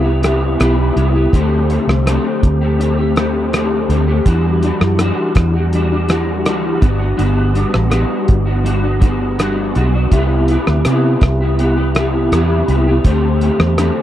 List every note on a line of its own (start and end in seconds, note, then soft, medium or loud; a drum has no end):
0.00 0.56 C2 medium
0.00 0.22 G4 medium
0.04 0.21 B3 soft
0.04 0.22 E4 soft
0.22 0.59 C3 medium
0.22 0.58 B3 medium
0.22 0.58 E4 medium
0.22 0.59 G4 medium
0.22 cross-stick medium
0.22 closed hi-hat medium
0.59 0.89 B1 medium
0.59 0.95 B3 medium
0.59 0.96 E4 medium
0.59 0.96 G4 medium
0.59 cross-stick medium
0.59 closed hi-hat medium
0.96 1.26 C2 medium
0.96 1.14 C3 medium
0.96 1.14 B3 medium
0.96 1.15 E4 medium
0.96 1.14 G4 medium
0.96 closed hi-hat medium
1.15 1.34 B3 soft
1.15 1.33 E4 soft
1.15 1.33 G4 medium
1.33 1.77 D2 loud
1.33 1.68 D3 medium
1.33 1.69 A3 medium
1.33 1.70 C4 medium
1.33 1.71 G4 medium
1.33 kick medium
1.33 closed hi-hat medium
1.69 2.05 D3 medium
1.69 2.05 A3 medium
1.69 2.05 C4 medium
1.69 2.06 G4 medium
1.69 closed hi-hat medium
1.87 2.17 C2 medium
1.87 cross-stick medium
2.06 2.61 D3 medium
2.06 2.61 A3 medium
2.06 2.60 C4 medium
2.06 2.60 G4 medium
2.06 cross-stick medium
2.06 closed hi-hat medium
2.43 3.85 D2 medium
2.43 kick medium
2.43 closed hi-hat soft
2.61 2.79 A3 soft
2.61 2.79 C4 soft
2.61 2.79 G4 medium
2.78 2.97 D3 medium
2.78 2.98 A3 medium
2.78 2.98 C4 medium
2.78 2.96 G4 medium
2.78 closed hi-hat medium
2.97 3.16 A3 soft
2.97 3.16 C4 soft
2.97 3.16 G4 soft
3.16 3.51 D3 medium
3.16 3.52 A3 medium
3.16 3.53 C4 medium
3.16 3.53 G4 medium
3.16 cross-stick medium
3.16 closed hi-hat soft
3.52 3.88 D3 medium
3.52 3.89 A3 medium
3.52 3.89 C4 medium
3.52 3.90 G4 medium
3.52 cross-stick medium
3.52 closed hi-hat medium
3.89 4.19 D2 medium
3.89 4.07 D3 medium
3.89 4.07 A3 medium
3.89 4.07 C4 medium
3.89 4.06 G4 medium
3.89 closed hi-hat medium
4.07 4.26 A3 soft
4.07 4.26 C4 soft
4.07 4.25 G4 medium
4.25 4.70 E2 loud
4.25 4.61 E3 medium
4.25 4.62 G3 medium
4.25 4.63 D4 medium
4.25 4.63 F#4 medium
4.25 kick medium
4.25 closed hi-hat medium
4.63 4.98 E3 medium
4.63 4.99 G3 medium
4.63 4.99 D4 medium
4.63 4.99 F#4 medium
4.63 closed hi-hat medium
4.81 5.10 F#2 medium
4.81 cross-stick medium
4.99 5.54 E3 medium
4.99 5.55 G3 medium
4.99 5.54 D4 medium
4.99 5.53 F#4 medium
4.99 cross-stick medium
4.99 closed hi-hat medium
5.35 6.46 E2 medium
5.35 kick medium
5.35 cross-stick medium
5.35 closed hi-hat medium
5.54 5.73 G3 medium
5.54 5.73 D4 soft
5.54 5.72 F#4 medium
5.73 5.91 E3 medium
5.73 5.91 G3 medium
5.73 5.91 D4 medium
5.73 5.89 F#4 medium
5.73 closed hi-hat medium
5.91 6.08 G3 soft
5.91 6.08 D4 medium
5.91 6.09 F#4 medium
6.08 6.44 E3 medium
6.08 6.45 G3 medium
6.08 6.45 D4 medium
6.08 6.45 F#4 medium
6.08 cross-stick medium
6.08 closed hi-hat soft
6.45 6.75 D2 medium
6.45 6.79 E3 medium
6.45 6.79 G3 medium
6.45 6.81 D4 medium
6.45 6.81 F#4 medium
6.45 cross-stick medium
6.45 closed hi-hat medium
6.80 7.11 G1 medium
6.80 6.99 G3 medium
6.80 7.00 B3 medium
6.80 6.98 D4 medium
6.80 6.97 F#4 medium
6.80 kick loud
6.80 closed hi-hat medium
6.98 7.16 B3 soft
6.98 7.17 D4 soft
6.98 7.18 F#4 medium
7.17 7.63 G1 medium
7.17 7.53 G3 medium
7.17 7.54 B3 medium
7.17 7.55 D4 medium
7.17 7.55 F#4 medium
7.17 closed hi-hat medium
7.54 7.88 G3 medium
7.54 7.89 B3 medium
7.54 7.90 D4 medium
7.54 7.90 F#4 medium
7.54 closed hi-hat medium
7.74 8.03 A1 medium
7.74 cross-stick medium
7.90 8.46 G3 medium
7.90 8.46 B3 medium
7.90 8.46 D4 medium
7.90 8.44 F#4 medium
7.90 cross-stick medium
7.90 closed hi-hat medium
8.28 9.71 G1 medium
8.28 kick medium
8.28 closed hi-hat medium
8.46 8.63 B3 soft
8.46 8.64 D4 medium
8.46 8.65 F#4 medium
8.63 8.83 G3 medium
8.63 8.83 B3 medium
8.63 8.82 D4 medium
8.63 8.81 F#4 medium
8.63 closed hi-hat medium
8.82 8.99 B3 soft
8.82 9.00 D4 soft
8.82 9.01 F#4 medium
9.00 9.37 G3 medium
9.00 9.38 B3 medium
9.00 9.38 D4 medium
9.00 9.38 F#4 medium
9.00 kick loud
9.00 closed hi-hat medium
9.38 9.74 G3 medium
9.38 9.75 B3 medium
9.38 9.75 D4 medium
9.38 9.76 F#4 medium
9.38 cross-stick medium
9.38 closed hi-hat medium
9.75 10.05 B1 medium
9.75 9.94 G3 medium
9.75 9.94 B3 medium
9.75 9.94 D4 medium
9.75 9.92 F#4 medium
9.75 closed hi-hat medium
9.93 10.10 B3 soft
9.93 10.12 D4 soft
9.93 10.12 F#4 soft
10.11 10.56 C2 loud
10.11 10.47 C3 medium
10.11 10.48 B3 medium
10.11 10.49 E4 medium
10.11 10.49 G4 medium
10.11 kick medium
10.11 closed hi-hat medium
10.48 10.83 C3 soft
10.48 10.84 B3 medium
10.48 10.85 E4 medium
10.48 10.85 G4 medium
10.48 closed hi-hat medium
10.67 10.82 D2 medium
10.67 cross-stick medium
10.85 11.40 C3 medium
10.85 11.15 C3 loud
10.85 11.40 B3 medium
10.85 11.41 E4 medium
10.85 11.40 G4 medium
10.85 cross-stick medium
10.85 closed hi-hat medium
11.21 12.28 C2 medium
11.21 kick medium
11.21 cross-stick medium
11.21 closed hi-hat soft
11.41 11.58 B3 soft
11.41 11.59 E4 medium
11.41 11.59 G4 medium
11.59 11.77 C3 medium
11.59 11.77 B3 medium
11.59 11.77 E4 medium
11.59 11.75 G4 medium
11.59 closed hi-hat medium
11.77 11.95 B3 soft
11.77 11.96 E4 medium
11.77 11.95 G4 medium
11.95 12.30 C3 medium
11.95 12.31 B3 medium
11.95 12.31 E4 medium
11.95 12.32 G4 medium
11.95 cross-stick loud
11.95 closed hi-hat soft
12.31 12.61 E2 medium
12.31 12.66 C3 medium
12.31 12.67 B3 medium
12.31 12.68 E4 medium
12.31 12.68 G4 medium
12.31 cross-stick medium
12.31 closed hi-hat medium
12.67 12.98 C2 medium
12.67 12.86 C3 medium
12.67 12.87 B3 medium
12.67 12.87 E4 medium
12.67 12.86 G4 medium
12.67 closed hi-hat soft
12.87 13.05 B3 soft
12.87 13.04 E4 medium
12.87 13.05 G4 medium
13.04 13.49 D2 loud
13.04 13.39 D3 medium
13.04 13.40 A3 medium
13.04 13.41 C4 medium
13.04 13.42 G4 medium
13.04 kick medium
13.04 closed hi-hat medium
13.41 13.76 D3 medium
13.41 13.76 A3 medium
13.41 13.77 C4 medium
13.41 13.77 G4 medium
13.41 closed hi-hat medium
13.59 13.89 E2 medium
13.59 cross-stick medium
13.77 14.02 D3 medium
13.77 14.02 A3 medium
13.77 14.02 C4 medium
13.77 14.02 G4 medium
13.77 cross-stick medium
13.77 closed hi-hat medium